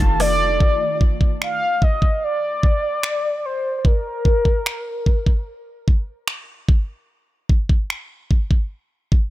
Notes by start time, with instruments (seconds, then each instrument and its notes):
Already playing: ambient pad D#3 A3 F4, grand piano F3 C4 D#4 G4 A4, soft synth lead A5
0.00 808-style bass F1, kick, closed hi-hat
0.20 soft synth lead D5, cross-stick, open hi-hat
0.60 kick
1.01 kick
1.21 kick
1.42 soft synth lead F5, finger snap
1.82 soft synth lead D#5, kick
2.02 kick
2.24 soft synth lead D5
2.63 kick
3.03 finger snap
3.45 soft synth lead C5
3.79 soft synth lead C5
3.85 soft synth lead A#4, kick
4.25 kick
4.45 kick
4.66 finger snap
5.06 kick
5.26 kick
5.88 kick
6.28 finger snap
6.69 kick
7.49 kick
7.69 kick
7.90 finger snap
8.31 kick
8.51 kick
9.12 kick